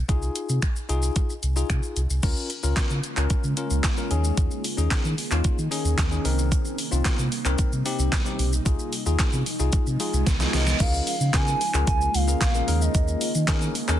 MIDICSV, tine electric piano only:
0, 0, Header, 1, 2, 480
1, 0, Start_track
1, 0, Tempo, 535714
1, 80, Time_signature, 4, 2, 24, 8
1, 12540, End_track
2, 0, Start_track
2, 0, Title_t, "Tine electric piano"
2, 0, Program_c, 0, 4
2, 76, Note_on_c, 0, 63, 83
2, 79, Note_on_c, 0, 65, 79
2, 80, Note_on_c, 0, 68, 97
2, 544, Note_off_c, 0, 63, 0
2, 545, Note_off_c, 0, 65, 0
2, 545, Note_off_c, 0, 68, 0
2, 797, Note_on_c, 0, 63, 89
2, 800, Note_on_c, 0, 65, 80
2, 801, Note_on_c, 0, 68, 103
2, 1186, Note_off_c, 0, 63, 0
2, 1188, Note_off_c, 0, 65, 0
2, 1188, Note_off_c, 0, 68, 0
2, 1397, Note_on_c, 0, 63, 84
2, 1400, Note_on_c, 0, 65, 78
2, 1403, Note_on_c, 0, 68, 93
2, 1787, Note_off_c, 0, 63, 0
2, 1788, Note_off_c, 0, 65, 0
2, 1789, Note_off_c, 0, 68, 0
2, 1997, Note_on_c, 0, 61, 82
2, 2000, Note_on_c, 0, 65, 73
2, 2002, Note_on_c, 0, 70, 92
2, 2231, Note_off_c, 0, 61, 0
2, 2232, Note_off_c, 0, 65, 0
2, 2234, Note_off_c, 0, 70, 0
2, 2357, Note_on_c, 0, 61, 83
2, 2358, Note_on_c, 0, 65, 77
2, 2361, Note_on_c, 0, 70, 91
2, 2669, Note_off_c, 0, 61, 0
2, 2669, Note_off_c, 0, 65, 0
2, 2671, Note_off_c, 0, 70, 0
2, 2838, Note_on_c, 0, 61, 87
2, 2841, Note_on_c, 0, 65, 80
2, 2843, Note_on_c, 0, 70, 94
2, 3072, Note_off_c, 0, 61, 0
2, 3073, Note_off_c, 0, 65, 0
2, 3074, Note_off_c, 0, 70, 0
2, 3199, Note_on_c, 0, 61, 87
2, 3201, Note_on_c, 0, 65, 78
2, 3203, Note_on_c, 0, 70, 90
2, 3432, Note_off_c, 0, 61, 0
2, 3433, Note_off_c, 0, 65, 0
2, 3434, Note_off_c, 0, 70, 0
2, 3558, Note_on_c, 0, 61, 86
2, 3561, Note_on_c, 0, 65, 78
2, 3563, Note_on_c, 0, 70, 93
2, 3667, Note_off_c, 0, 61, 0
2, 3677, Note_on_c, 0, 61, 83
2, 3680, Note_off_c, 0, 65, 0
2, 3680, Note_on_c, 0, 63, 75
2, 3682, Note_off_c, 0, 70, 0
2, 3682, Note_on_c, 0, 68, 91
2, 4159, Note_off_c, 0, 61, 0
2, 4160, Note_off_c, 0, 63, 0
2, 4161, Note_off_c, 0, 68, 0
2, 4277, Note_on_c, 0, 61, 80
2, 4280, Note_on_c, 0, 63, 77
2, 4282, Note_on_c, 0, 68, 93
2, 4589, Note_off_c, 0, 61, 0
2, 4590, Note_off_c, 0, 63, 0
2, 4591, Note_off_c, 0, 68, 0
2, 4757, Note_on_c, 0, 61, 85
2, 4759, Note_on_c, 0, 63, 77
2, 4762, Note_on_c, 0, 65, 100
2, 4991, Note_off_c, 0, 61, 0
2, 4992, Note_off_c, 0, 63, 0
2, 4994, Note_off_c, 0, 65, 0
2, 5116, Note_on_c, 0, 61, 86
2, 5118, Note_on_c, 0, 63, 81
2, 5120, Note_on_c, 0, 68, 95
2, 5351, Note_off_c, 0, 61, 0
2, 5352, Note_off_c, 0, 63, 0
2, 5353, Note_off_c, 0, 68, 0
2, 5475, Note_on_c, 0, 61, 87
2, 5477, Note_on_c, 0, 63, 81
2, 5480, Note_on_c, 0, 68, 94
2, 5587, Note_off_c, 0, 63, 0
2, 5596, Note_on_c, 0, 60, 90
2, 5597, Note_off_c, 0, 61, 0
2, 5598, Note_on_c, 0, 63, 77
2, 5600, Note_off_c, 0, 68, 0
2, 5601, Note_on_c, 0, 70, 92
2, 6078, Note_off_c, 0, 60, 0
2, 6079, Note_off_c, 0, 63, 0
2, 6080, Note_off_c, 0, 70, 0
2, 6194, Note_on_c, 0, 60, 82
2, 6197, Note_on_c, 0, 63, 77
2, 6199, Note_on_c, 0, 65, 93
2, 6507, Note_off_c, 0, 60, 0
2, 6509, Note_off_c, 0, 63, 0
2, 6510, Note_off_c, 0, 65, 0
2, 6674, Note_on_c, 0, 60, 91
2, 6677, Note_on_c, 0, 63, 80
2, 6679, Note_on_c, 0, 70, 98
2, 6910, Note_off_c, 0, 60, 0
2, 6911, Note_off_c, 0, 63, 0
2, 6912, Note_off_c, 0, 70, 0
2, 7036, Note_on_c, 0, 60, 90
2, 7038, Note_on_c, 0, 63, 84
2, 7041, Note_on_c, 0, 67, 96
2, 7271, Note_off_c, 0, 60, 0
2, 7272, Note_off_c, 0, 63, 0
2, 7273, Note_off_c, 0, 67, 0
2, 7395, Note_on_c, 0, 60, 88
2, 7396, Note_on_c, 0, 63, 83
2, 7398, Note_on_c, 0, 67, 99
2, 7630, Note_off_c, 0, 60, 0
2, 7631, Note_off_c, 0, 63, 0
2, 7632, Note_off_c, 0, 67, 0
2, 7754, Note_on_c, 0, 63, 84
2, 7756, Note_on_c, 0, 65, 79
2, 7759, Note_on_c, 0, 68, 91
2, 7990, Note_off_c, 0, 63, 0
2, 7991, Note_off_c, 0, 65, 0
2, 7992, Note_off_c, 0, 68, 0
2, 8117, Note_on_c, 0, 63, 82
2, 8120, Note_on_c, 0, 65, 80
2, 8122, Note_on_c, 0, 68, 94
2, 8429, Note_off_c, 0, 63, 0
2, 8430, Note_off_c, 0, 65, 0
2, 8431, Note_off_c, 0, 68, 0
2, 8597, Note_on_c, 0, 63, 91
2, 8599, Note_on_c, 0, 65, 80
2, 8602, Note_on_c, 0, 68, 94
2, 8831, Note_off_c, 0, 63, 0
2, 8832, Note_off_c, 0, 65, 0
2, 8834, Note_off_c, 0, 68, 0
2, 8959, Note_on_c, 0, 63, 90
2, 8960, Note_on_c, 0, 65, 82
2, 8963, Note_on_c, 0, 68, 96
2, 9192, Note_off_c, 0, 63, 0
2, 9193, Note_off_c, 0, 65, 0
2, 9194, Note_off_c, 0, 68, 0
2, 9316, Note_on_c, 0, 63, 90
2, 9318, Note_on_c, 0, 65, 82
2, 9321, Note_on_c, 0, 68, 96
2, 9551, Note_off_c, 0, 63, 0
2, 9552, Note_off_c, 0, 65, 0
2, 9553, Note_off_c, 0, 68, 0
2, 9676, Note_on_c, 0, 61, 74
2, 9678, Note_on_c, 0, 65, 66
2, 9679, Note_on_c, 0, 68, 69
2, 9680, Note_on_c, 0, 70, 83
2, 9988, Note_off_c, 0, 61, 0
2, 9989, Note_off_c, 0, 65, 0
2, 9990, Note_off_c, 0, 68, 0
2, 9990, Note_off_c, 0, 70, 0
2, 10158, Note_on_c, 0, 61, 75
2, 10160, Note_on_c, 0, 65, 68
2, 10161, Note_on_c, 0, 68, 67
2, 10163, Note_on_c, 0, 70, 81
2, 10392, Note_off_c, 0, 61, 0
2, 10393, Note_off_c, 0, 65, 0
2, 10393, Note_off_c, 0, 68, 0
2, 10394, Note_off_c, 0, 70, 0
2, 10516, Note_on_c, 0, 61, 78
2, 10518, Note_on_c, 0, 65, 72
2, 10519, Note_on_c, 0, 68, 71
2, 10521, Note_on_c, 0, 70, 87
2, 10828, Note_off_c, 0, 61, 0
2, 10829, Note_off_c, 0, 65, 0
2, 10830, Note_off_c, 0, 68, 0
2, 10831, Note_off_c, 0, 70, 0
2, 10997, Note_on_c, 0, 61, 73
2, 10998, Note_on_c, 0, 65, 72
2, 10999, Note_on_c, 0, 68, 70
2, 11001, Note_on_c, 0, 70, 80
2, 11154, Note_off_c, 0, 61, 0
2, 11154, Note_off_c, 0, 65, 0
2, 11155, Note_off_c, 0, 68, 0
2, 11156, Note_off_c, 0, 70, 0
2, 11237, Note_on_c, 0, 61, 77
2, 11239, Note_on_c, 0, 65, 72
2, 11241, Note_on_c, 0, 68, 69
2, 11242, Note_on_c, 0, 70, 84
2, 11346, Note_off_c, 0, 61, 0
2, 11349, Note_off_c, 0, 68, 0
2, 11351, Note_off_c, 0, 70, 0
2, 11357, Note_on_c, 0, 61, 77
2, 11359, Note_off_c, 0, 65, 0
2, 11359, Note_on_c, 0, 63, 70
2, 11360, Note_on_c, 0, 68, 69
2, 11362, Note_on_c, 0, 70, 87
2, 11934, Note_off_c, 0, 61, 0
2, 11935, Note_off_c, 0, 63, 0
2, 11936, Note_off_c, 0, 68, 0
2, 11937, Note_off_c, 0, 70, 0
2, 12077, Note_on_c, 0, 61, 89
2, 12079, Note_on_c, 0, 63, 83
2, 12080, Note_on_c, 0, 68, 86
2, 12082, Note_on_c, 0, 70, 103
2, 12311, Note_off_c, 0, 61, 0
2, 12312, Note_off_c, 0, 63, 0
2, 12313, Note_off_c, 0, 68, 0
2, 12314, Note_off_c, 0, 70, 0
2, 12436, Note_on_c, 0, 61, 92
2, 12437, Note_on_c, 0, 63, 84
2, 12439, Note_on_c, 0, 68, 83
2, 12440, Note_on_c, 0, 70, 103
2, 12540, Note_off_c, 0, 61, 0
2, 12540, Note_off_c, 0, 63, 0
2, 12540, Note_off_c, 0, 68, 0
2, 12540, Note_off_c, 0, 70, 0
2, 12540, End_track
0, 0, End_of_file